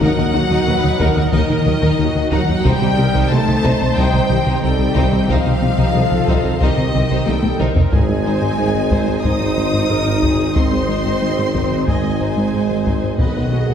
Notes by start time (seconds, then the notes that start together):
Already playing: A#2 D#3 D#4 D#5
0.01 D#2 D#3 F#3 D#4 A#4 F#5, taiko
0.17 D#2 D#3 A#3 D#4 A#4
0.33 D#2 D#3 A#3 F#4
0.50 D#2 D#3 D#4 A#4
0.67 D#2 D#3 A#3 D#4 A#4 B4
0.84 D#2, taiko mid
0.99 D#2 D#3 D#4 A#4, taiko
1.16 D#2 D#4 A#4
1.32 D#2 D#3 D#4 A#4 D#5, taiko
1.49 D#2 D#4 A#4, taiko mid
1.66 D#2 F#3 A#3 F#4, taiko mid
1.81 D#2 D#3 D#4 A#4
1.98 D#2 D#4 F#4 A#4
2.15 D#2
2.31 D#2 D#3 F#3 D#4 A#4 F#5, taiko
2.48 D#2 D#4 A#4
2.63 C2 C3 D#3 G3 C4 D#4 G4 C5 D#5 G5, taiko
2.80 C2 C3 G3 D#4 C5
2.97 C2 C3 G3 C4 G4 A#4
3.14 C2 C3 D#4 C5
3.30 C2 C3 G3 A3 D#4 C5 A5
3.48 C2, taiko mid
3.64 C2 C3 D#4 C5, taiko
3.80 C2 C4 D#4 C5
3.96 C2 C3 G3 D#4 C5 G5, taiko
4.12 C2 C4 D#4 C5, taiko mid
4.29 C2 D#3 C4 G4, taiko mid
4.46 C2 C3 D#4 C5
4.62 C2 G3 C4 D#4 A4 C5 G5
4.79 C2
4.95 C2 C3 D#4 G4 C5, taiko
5.12 C2 C4 D#4 C5
5.28 C2 C3 F3 D#4 C5 F5, taiko
5.45 C2 C3 G3 D#4 C5
5.61 C2 C3 G3 C4 G4
5.78 C2 C3 D#4 C5
5.94 C2 C3 G3 D#4 A4 C5
6.11 C2, taiko mid
6.27 C2 C3 D#4 C5, taiko
6.44 C2 C4 D#4 C5
6.60 C2 C3 D#3 D#4 G4 C5 D#5, taiko
6.77 C2 C4 D#4 C5, taiko mid
6.93 C2 D#3 C4 G4, taiko mid
7.10 C2 C3 D#4 C5
7.26 C2 G3 C4 D#4 A4 C5 G5, taiko high
7.43 C2, taiko high
7.59 C2 C3 D#4 A#4 C5, taiko mid
7.76 C2 C4 D#4 C5, taiko low
7.92 G#1 G#2 D#3 G#3 C4 D#4 G#4 C5 D#5 G#5, taiko
8.09 G#3 D#4
8.26 G#3 D#4 C5
8.42 G#2 G#3
8.58 G#1 G#3 D#4 G#4 C5
8.75 G#2
8.91 G#2 G#3 D#4 C5, taiko
9.08 G#2 G#4
9.23 G#1 G#2 G#3 D#4 C5 D#6, taiko
9.41 G#2 G#4
9.57 G#2 C4 D#4 C5
9.74 G#2 G#3
9.90 G#1 G#2 D#4 G#4 A#4 C5
10.07 G#2
10.23 G#2 G#3 D#4 G#4 C5, taiko
10.39 G#2 G#4
10.55 G#1 G#2 G#3 C4 D#4 C5 C6, taiko
10.72 G#3 D#4
10.89 G#3 D#4 C5
11.05 G#2 G#3
11.22 G#1 G#3 D#4 C5
11.39 G#2
11.55 G#2 G#3 D#4 C5, taiko
11.71 G#2 G#4
11.87 G#1 G#2 G#3 D#4 C5 D#5 G#5, taiko
12.04 G#2 G#4
12.20 G#2 C4 D#4 C5
12.36 G#2 G#3
12.53 G#1 G#2 D#4 G#4 C5
12.71 G#2
12.86 G#2 G#3 D#4 C5, taiko
13.03 G#2 G#4
13.19 B1 B2 D#3 F#3 B3 F#4 B4 D#5 F#5, taiko
13.36 B3 F#4
13.52 B3 F#4 G#4 B4
13.69 B2 B3